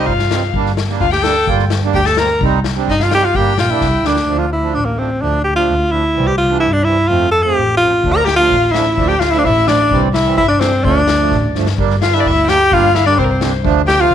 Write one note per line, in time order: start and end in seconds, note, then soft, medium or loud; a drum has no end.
0.00 0.13 G3 medium
0.00 0.13 C4 medium
0.00 0.14 D#4 medium
0.06 0.21 G2 medium
0.06 0.54 F4 medium
0.06 0.54 F5 medium
0.06 kick medium
0.19 snare soft
0.31 0.42 G3 medium
0.31 0.43 C4 soft
0.31 0.43 D#4 medium
0.31 snare medium
0.54 0.68 G1 medium
0.54 0.71 G3 medium
0.54 0.72 A#3 medium
0.54 0.72 D4 medium
0.54 kick medium
0.66 snare soft
0.77 snare medium
0.88 1.06 G3 medium
0.88 1.06 A#3 medium
0.88 1.07 D4 medium
0.88 snare soft
1.00 1.15 D2 medium
1.00 1.12 F4 medium
1.00 1.12 F5 medium
1.00 kick medium
1.11 1.24 G4 medium
1.11 1.47 G5 medium
1.11 snare medium
1.22 1.35 G3 medium
1.22 1.36 A#3 soft
1.22 1.36 D4 medium
1.22 1.47 A4 medium
1.22 snare medium
1.47 1.61 G1 loud
1.47 1.65 G3 medium
1.47 1.65 A#3 medium
1.47 1.65 F4 medium
1.47 kick medium
1.59 snare soft
1.70 snare medium
1.83 2.00 G3 medium
1.83 2.01 A#3 medium
1.83 2.01 D4 medium
1.94 2.08 D2 loud
1.94 2.08 G4 medium
1.94 2.06 G5 medium
1.94 kick medium
2.05 2.20 A4 medium
2.05 2.20 A5 medium
2.05 snare medium
2.17 2.29 G3 medium
2.17 2.30 A#3 medium
2.17 2.30 C4 medium
2.17 2.42 A#4 medium
2.17 2.42 A#5 medium
2.17 snare medium
2.41 2.55 C2 loud
2.41 2.59 G3 medium
2.41 2.59 C4 medium
2.41 2.60 D#4 medium
2.41 kick medium
2.64 snare medium
2.75 2.93 G3 medium
2.75 2.94 C4 medium
2.75 2.94 D4 medium
2.75 snare soft
2.88 3.02 G2 medium
2.88 3.04 D#4 medium
2.88 3.00 D#5 medium
2.88 kick medium
3.00 3.13 F4 medium
3.00 3.12 F5 medium
3.00 snare medium
3.11 3.24 G3 medium
3.11 3.24 C4 soft
3.11 3.24 D#4 medium
3.11 3.26 G4 loud
3.11 3.24 G5 medium
3.11 snare medium
3.23 3.37 F4 medium
3.23 3.37 F5 medium
3.34 3.49 G1 loud
3.34 3.52 G3 medium
3.34 3.53 A#3 medium
3.34 3.54 D4 medium
3.34 3.59 G4 medium
3.34 4.06 G5 medium
3.34 kick medium
3.57 3.79 A#1 medium
3.57 3.72 F4 medium
3.57 snare medium
3.69 3.87 G3 medium
3.69 3.87 A#3 medium
3.69 3.88 D4 medium
3.69 4.07 E4 medium
3.81 4.03 C2 medium
3.81 kick medium
3.81 snare soft
4.04 4.26 D2 medium
4.04 4.16 G3 medium
4.04 4.17 A#3 medium
4.04 4.17 D4 medium
4.04 4.40 D4 medium
4.04 snare medium
4.16 snare soft
4.26 4.56 D2 medium
4.26 4.45 F3 medium
4.26 4.45 A3 medium
4.26 4.46 D4 medium
4.38 4.51 F4 medium
4.52 4.76 E4 medium
4.61 4.80 F3 medium
4.61 4.81 A3 medium
4.61 4.81 D4 medium
4.74 5.04 A1 medium
4.74 4.87 D4 medium
4.85 5.00 A#3 medium
4.97 5.10 F3 soft
4.97 5.10 A3 soft
4.97 5.23 C4 medium
4.97 5.11 D4 medium
5.20 5.50 D2 medium
5.20 5.39 F3 medium
5.20 5.39 A3 medium
5.20 5.40 D4 medium
5.20 5.44 D4 medium
5.44 5.55 G4 medium
5.55 5.74 F3 medium
5.55 5.74 A3 medium
5.55 5.75 D4 medium
5.55 5.93 F4 medium
5.69 5.97 D2 medium
5.90 6.03 F3 soft
5.90 6.04 A3 soft
5.90 6.04 D4 soft
5.90 6.29 E4 medium
6.13 6.45 C2 loud
6.13 6.32 E3 medium
6.13 6.33 G3 medium
6.13 6.33 C4 medium
6.27 6.37 G4 medium
6.38 6.59 F4 medium
6.49 6.68 E3 medium
6.49 6.68 G3 medium
6.49 6.69 D4 medium
6.60 6.92 G2 medium
6.60 6.74 E4 medium
6.72 6.86 D4 medium
6.83 6.97 E3 medium
6.83 6.97 G3 soft
6.83 6.98 C4 medium
6.83 7.09 E4 medium
7.08 7.38 F2 medium
7.08 7.27 F3 medium
7.08 7.27 A3 medium
7.08 7.28 C4 medium
7.08 7.31 F4 medium
7.31 7.44 A4 medium
7.42 7.62 F3 medium
7.42 7.62 A3 medium
7.42 7.63 C4 medium
7.42 7.76 G4 medium
7.57 7.85 A1 medium
7.77 7.92 F3 medium
7.77 7.92 A3 soft
7.77 7.93 C4 medium
7.77 8.13 F4 medium
8.04 8.32 D2 medium
8.04 8.21 F3 medium
8.04 8.22 A3 medium
8.04 8.22 D4 medium
8.04 kick medium
8.12 8.26 A#4 medium
8.12 8.28 A#5 medium
8.25 8.36 G4 medium
8.25 8.40 G5 medium
8.25 snare medium
8.36 8.56 F3 medium
8.36 8.57 A3 medium
8.36 8.57 D4 medium
8.36 8.73 F4 loud
8.36 8.66 F5 medium
8.51 8.79 A1 medium
8.51 kick medium
8.51 snare soft
8.66 8.75 F5 medium
8.71 8.86 F3 soft
8.71 8.86 A3 soft
8.71 8.86 D4 medium
8.71 9.10 E4 medium
8.71 9.10 E5 medium
8.71 snare medium
8.96 9.26 D2 medium
8.96 9.14 F3 medium
8.96 9.15 A3 medium
8.96 9.15 D4 medium
8.96 kick medium
9.08 9.21 G4 medium
9.08 9.20 G5 medium
9.19 9.33 F4 medium
9.19 9.35 F5 medium
9.19 snare medium
9.31 9.50 F3 medium
9.31 9.50 A3 medium
9.31 9.51 D4 medium
9.31 9.40 E4 loud
9.31 9.40 E5 medium
9.38 9.46 D4 medium
9.38 9.48 F5 medium
9.44 9.73 A1 loud
9.44 9.69 E4 medium
9.44 9.69 E5 medium
9.44 kick medium
9.66 9.79 F3 medium
9.66 9.80 A3 soft
9.66 10.03 D4 medium
9.66 9.80 D4 medium
9.66 10.03 D5 medium
9.66 snare medium
9.90 10.19 C2 loud
9.90 10.08 E3 medium
9.90 10.08 G3 medium
9.90 10.09 C4 medium
9.90 kick medium
10.14 10.36 E4 medium
10.14 10.37 E5 medium
10.14 snare medium
10.24 10.43 E3 medium
10.24 10.43 G3 medium
10.24 10.44 C4 medium
10.37 10.66 G2 medium
10.37 10.48 E4 medium
10.37 10.51 E5 medium
10.37 kick medium
10.48 10.62 D4 medium
10.48 10.60 D5 medium
10.60 10.72 E3 medium
10.60 10.73 G3 soft
10.60 10.86 C4 medium
10.60 10.73 D4 medium
10.60 10.83 C5 medium
10.60 snare medium
10.83 11.13 D2 loud
10.83 11.02 F3 medium
10.83 11.02 A3 medium
10.83 11.55 D4 medium
10.83 11.02 D4 medium
10.83 11.50 D5 medium
10.83 kick medium
11.08 snare medium
11.17 11.36 F3 medium
11.17 11.37 A3 medium
11.17 11.37 D4 medium
11.31 11.53 A1 loud
11.31 kick medium
11.31 snare soft
11.54 11.75 G1 medium
11.54 11.66 F3 medium
11.54 11.67 A3 medium
11.54 11.67 D4 medium
11.54 snare soft
11.66 snare medium
11.77 12.06 G1 loud
11.77 11.95 G3 medium
11.77 11.95 A#3 medium
11.77 11.96 D4 medium
11.77 kick medium
11.90 snare soft
12.01 12.16 F4 medium
12.01 12.15 F5 medium
12.01 snare medium
12.13 12.30 G3 medium
12.13 12.31 A#3 medium
12.13 12.31 D4 medium
12.13 12.51 E4 medium
12.13 12.22 E5 medium
12.20 12.29 D5 medium
12.25 12.53 D2 medium
12.25 12.47 E5 medium
12.25 kick medium
12.47 12.59 G3 medium
12.47 12.60 A#3 soft
12.47 12.60 D4 medium
12.47 12.75 G4 loud
12.47 12.73 G5 medium
12.47 snare medium
12.71 13.00 G1 loud
12.71 12.89 G3 medium
12.71 12.89 A#3 medium
12.71 12.90 D4 medium
12.71 12.97 F4 medium
12.71 13.07 F5 medium
12.71 kick medium
12.95 13.06 E4 medium
12.95 snare medium
13.05 13.23 G3 medium
13.05 13.24 A#3 medium
13.05 13.20 D4 medium
13.05 13.24 D4 medium
13.05 13.17 D5 medium
13.17 13.46 C2 medium
13.17 13.53 C4 medium
13.17 13.25 C5 medium
13.17 kick medium
13.24 13.32 A#4 medium
13.31 13.53 C5 medium
13.39 13.52 G3 medium
13.39 13.53 A#3 soft
13.39 13.53 D4 medium
13.39 snare medium
13.63 13.93 D2 loud
13.63 13.81 F3 medium
13.63 13.82 A3 medium
13.63 13.82 D4 loud
13.63 kick medium
13.87 14.02 G4 medium
13.87 14.02 G5 medium
13.87 snare medium
13.98 14.14 F3 medium
13.98 14.14 A3 medium
13.98 14.14 F4 medium
13.98 14.14 F5 medium
14.11 14.14 A1 loud
14.11 kick medium